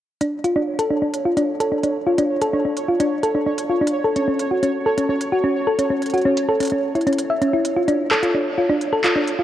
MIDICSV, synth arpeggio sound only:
0, 0, Header, 1, 2, 480
1, 0, Start_track
1, 0, Tempo, 465116
1, 215, Time_signature, 4, 2, 24, 8
1, 9737, End_track
2, 0, Start_track
2, 0, Title_t, "Synth arpeggio sound"
2, 0, Program_c, 0, 84
2, 215, Note_on_c, 0, 62, 77
2, 319, Note_off_c, 0, 62, 0
2, 454, Note_on_c, 0, 65, 71
2, 517, Note_off_c, 0, 65, 0
2, 575, Note_on_c, 0, 62, 96
2, 689, Note_off_c, 0, 62, 0
2, 815, Note_on_c, 0, 69, 92
2, 929, Note_off_c, 0, 69, 0
2, 935, Note_on_c, 0, 62, 73
2, 997, Note_off_c, 0, 62, 0
2, 1054, Note_on_c, 0, 62, 73
2, 1159, Note_off_c, 0, 62, 0
2, 1295, Note_on_c, 0, 65, 74
2, 1357, Note_off_c, 0, 65, 0
2, 1414, Note_on_c, 0, 62, 91
2, 1528, Note_off_c, 0, 62, 0
2, 1654, Note_on_c, 0, 69, 95
2, 1768, Note_off_c, 0, 69, 0
2, 1774, Note_on_c, 0, 62, 73
2, 1837, Note_off_c, 0, 62, 0
2, 1895, Note_on_c, 0, 62, 71
2, 1999, Note_off_c, 0, 62, 0
2, 2135, Note_on_c, 0, 65, 78
2, 2197, Note_off_c, 0, 65, 0
2, 2255, Note_on_c, 0, 62, 95
2, 2369, Note_off_c, 0, 62, 0
2, 2495, Note_on_c, 0, 69, 94
2, 2609, Note_off_c, 0, 69, 0
2, 2615, Note_on_c, 0, 62, 82
2, 2677, Note_off_c, 0, 62, 0
2, 2735, Note_on_c, 0, 62, 69
2, 2839, Note_off_c, 0, 62, 0
2, 2975, Note_on_c, 0, 65, 74
2, 3037, Note_off_c, 0, 65, 0
2, 3095, Note_on_c, 0, 62, 94
2, 3209, Note_off_c, 0, 62, 0
2, 3335, Note_on_c, 0, 69, 96
2, 3449, Note_off_c, 0, 69, 0
2, 3455, Note_on_c, 0, 62, 73
2, 3517, Note_off_c, 0, 62, 0
2, 3575, Note_on_c, 0, 62, 81
2, 3679, Note_off_c, 0, 62, 0
2, 3814, Note_on_c, 0, 65, 68
2, 3877, Note_off_c, 0, 65, 0
2, 3935, Note_on_c, 0, 62, 94
2, 4049, Note_off_c, 0, 62, 0
2, 4174, Note_on_c, 0, 69, 93
2, 4288, Note_off_c, 0, 69, 0
2, 4295, Note_on_c, 0, 61, 75
2, 4357, Note_off_c, 0, 61, 0
2, 4415, Note_on_c, 0, 61, 72
2, 4519, Note_off_c, 0, 61, 0
2, 4655, Note_on_c, 0, 66, 69
2, 4717, Note_off_c, 0, 66, 0
2, 4774, Note_on_c, 0, 61, 89
2, 4888, Note_off_c, 0, 61, 0
2, 5014, Note_on_c, 0, 69, 97
2, 5128, Note_off_c, 0, 69, 0
2, 5134, Note_on_c, 0, 61, 76
2, 5197, Note_off_c, 0, 61, 0
2, 5253, Note_on_c, 0, 61, 71
2, 5358, Note_off_c, 0, 61, 0
2, 5493, Note_on_c, 0, 66, 77
2, 5556, Note_off_c, 0, 66, 0
2, 5613, Note_on_c, 0, 61, 96
2, 5728, Note_off_c, 0, 61, 0
2, 5854, Note_on_c, 0, 69, 96
2, 5968, Note_off_c, 0, 69, 0
2, 5973, Note_on_c, 0, 61, 76
2, 6036, Note_off_c, 0, 61, 0
2, 6093, Note_on_c, 0, 61, 76
2, 6198, Note_off_c, 0, 61, 0
2, 6333, Note_on_c, 0, 66, 76
2, 6396, Note_off_c, 0, 66, 0
2, 6454, Note_on_c, 0, 61, 98
2, 6568, Note_off_c, 0, 61, 0
2, 6694, Note_on_c, 0, 69, 94
2, 6808, Note_off_c, 0, 69, 0
2, 6815, Note_on_c, 0, 61, 72
2, 6877, Note_off_c, 0, 61, 0
2, 6934, Note_on_c, 0, 61, 77
2, 7038, Note_off_c, 0, 61, 0
2, 7174, Note_on_c, 0, 64, 70
2, 7278, Note_off_c, 0, 64, 0
2, 7293, Note_on_c, 0, 61, 93
2, 7408, Note_off_c, 0, 61, 0
2, 7533, Note_on_c, 0, 76, 71
2, 7638, Note_off_c, 0, 76, 0
2, 7653, Note_on_c, 0, 61, 93
2, 7768, Note_off_c, 0, 61, 0
2, 7775, Note_on_c, 0, 64, 76
2, 7879, Note_off_c, 0, 64, 0
2, 8014, Note_on_c, 0, 65, 71
2, 8077, Note_off_c, 0, 65, 0
2, 8133, Note_on_c, 0, 62, 93
2, 8248, Note_off_c, 0, 62, 0
2, 8372, Note_on_c, 0, 69, 101
2, 8487, Note_off_c, 0, 69, 0
2, 8492, Note_on_c, 0, 65, 73
2, 8556, Note_off_c, 0, 65, 0
2, 8613, Note_on_c, 0, 62, 69
2, 8718, Note_off_c, 0, 62, 0
2, 8853, Note_on_c, 0, 65, 79
2, 8916, Note_off_c, 0, 65, 0
2, 8973, Note_on_c, 0, 62, 99
2, 9088, Note_off_c, 0, 62, 0
2, 9213, Note_on_c, 0, 69, 95
2, 9328, Note_off_c, 0, 69, 0
2, 9333, Note_on_c, 0, 65, 78
2, 9396, Note_off_c, 0, 65, 0
2, 9452, Note_on_c, 0, 62, 71
2, 9557, Note_off_c, 0, 62, 0
2, 9692, Note_on_c, 0, 65, 74
2, 9737, Note_off_c, 0, 65, 0
2, 9737, End_track
0, 0, End_of_file